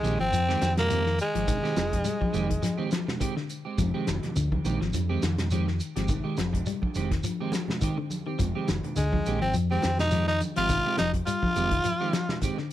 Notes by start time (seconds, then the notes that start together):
Already playing: D#3 G#3
0.03 A#1 D#3 G#3 C4 G4, closed hi-hat, high conga, shekere
0.19 G#1 F3 C4, muted clean electric guitar stroke
0.32 F2 F3, muted clean electric guitar stroke, closed hi-hat, shekere
0.48 D#3 G#3 C4 G4, snare
0.61 F2 D#3, muted clean electric guitar stroke, snare, closed hi-hat, high conga, shekere
0.77 A#3, muted clean electric guitar stroke, snare, closed hi-hat, low conga
0.89 D#3 F3 G#3 C4 G4, closed hi-hat, shekere
1.05 D#3, muted clean electric guitar stroke, snare
1.19 G#3, closed hi-hat, shekere
1.34 G#1 F3 G#3 C4 G4, closed hi-hat
1.48 D#3, kick, closed hi-hat, low conga, shekere
1.63 D#3 G#3 C4 G4, snare
1.76 F1 F3, muted clean electric guitar stroke, snare, closed hi-hat, high conga, shekere
1.92 muted clean electric guitar stroke, kick, closed hi-hat, high conga, low conga
2.05 G3, muted clean electric guitar stroke, closed hi-hat, shekere
2.21 F3, kick, high conga
2.33 F1 D#3 G#3 C4 G4, closed hi-hat, high conga, shekere
2.50 D#3, muted clean electric guitar stroke, kick, closed hi-hat
2.63 F3, muted clean electric guitar stroke, snare, closed hi-hat, high conga, shekere
2.78 D#3 G#3 C4 G4
2.91 F3, muted clean electric guitar stroke, snare, closed hi-hat, high conga, shekere
3.07 muted clean electric guitar stroke, snare, low conga
3.20 D#3 G#3 C4 G4, kick, closed hi-hat, shekere
3.36 D3, muted clean electric guitar stroke, snare
3.49 closed hi-hat, shekere
3.65 G#3 C4 G4
3.78 F1 F3, kick, closed hi-hat, low conga, shekere
3.94 D#3 G#3 C4 G4
4.07 F1 D#3, muted clean electric guitar stroke, snare, closed hi-hat, high conga, shekere
4.23 muted clean electric guitar stroke, snare, closed hi-hat, high conga, low conga
4.36 D2 D3, muted clean electric guitar stroke, closed hi-hat, shekere
4.52 D#3, kick, high conga
4.65 A#1 D#3 G#3 C4 G4, closed hi-hat, high conga, shekere
4.81 G#1 F3, muted clean electric guitar stroke, snare
4.93 F2 F3, muted clean electric guitar stroke, closed hi-hat, high conga, shekere
5.09 D#3 G#3 C4 G4
5.22 F2 D#3, snare, closed hi-hat, high conga, shekere
5.38 muted clean electric guitar stroke, snare, closed hi-hat, low conga
5.51 D#3 F3 G#3 C4 G4, closed hi-hat, shekere
5.67 D#3, muted clean electric guitar stroke, snare
5.80 closed hi-hat, shekere
5.96 G#1 F3 G#3 C4 G4, snare, closed hi-hat
6.08 D#3, kick, closed hi-hat, low conga, shekere
6.24 D#3 G#3 G4
6.37 F1 F3, snare, closed hi-hat, high conga, shekere
6.53 muted clean electric guitar stroke, kick, closed hi-hat, low conga
6.66 G3, muted clean electric guitar stroke, closed hi-hat, shekere
6.82 kick, high conga
6.95 F1 D#3 G#3 C4 G4, closed hi-hat, high conga, shekere
7.11 D#3, muted clean electric guitar stroke, kick, snare, closed hi-hat
7.23 F3, muted clean electric guitar stroke, closed hi-hat, high conga, shekere
7.40 D#3 G#3 C4 G4
7.52 F3, muted clean electric guitar stroke, snare, closed hi-hat, high conga, shekere
7.68 muted clean electric guitar stroke, snare, low conga
7.81 D#3 G#3 C4 G4, kick, closed hi-hat, shekere
7.98 D3, muted clean electric guitar stroke
8.10 closed hi-hat, high conga, shekere
8.27 D#3 C4 G4, muted clean electric guitar stroke
8.39 F1 F3, kick, closed hi-hat, low conga, shekere
8.55 D#3 G#3 C4 G4
8.68 F1 D#3, muted clean electric guitar stroke, snare, closed hi-hat, high conga, shekere
8.83 muted clean electric guitar stroke, closed hi-hat, low conga
8.96 D2 D3 G#3, muted clean electric guitar stroke, closed hi-hat, shekere
9.12 F3, kick, high conga
9.25 A#1 D#3 G#3 C4 G4, closed hi-hat, high conga, shekere
9.41 G#1 F3 C4, muted clean electric guitar stroke
9.54 F2 F3, muted clean electric guitar stroke, closed hi-hat, shekere
9.71 D#3 G#3 C4 G4
9.82 F2 D#3, snare, closed hi-hat, high conga, shekere
9.99 D#4, muted clean electric guitar stroke, snare, closed hi-hat, low conga
10.11 D#3 F3 G#3 C4 G4, closed hi-hat, shekere
10.28 D#3 D#4, muted clean electric guitar stroke, snare
10.40 closed hi-hat, high conga, shekere
10.56 G#1 F3 G#3 C4 F4 G4, snare, closed hi-hat
10.69 D#3, kick, closed hi-hat, low conga, shekere
10.86 D#3 G#3 C4 G4
10.97 F1 F3 D#4, snare, closed hi-hat, high conga, shekere
11.14 muted clean electric guitar stroke, kick, closed hi-hat
11.26 G3 F4, muted clean electric guitar stroke, closed hi-hat, shekere
11.43 F3, kick, high conga
11.56 F1 D#3 G#3 C4 G4, closed hi-hat, high conga, shekere
11.71 D#3, muted clean electric guitar stroke, kick, closed hi-hat
11.84 F3, muted clean electric guitar stroke, closed hi-hat, high conga, shekere
12.01 D#3 G#3 C4 G4
12.13 F3, muted clean electric guitar stroke, snare, closed hi-hat, high conga, shekere
12.29 muted clean electric guitar stroke, snare, low conga
12.42 D#3 G#3 C4 G4, kick, closed hi-hat, shekere
12.58 D3, muted clean electric guitar stroke, snare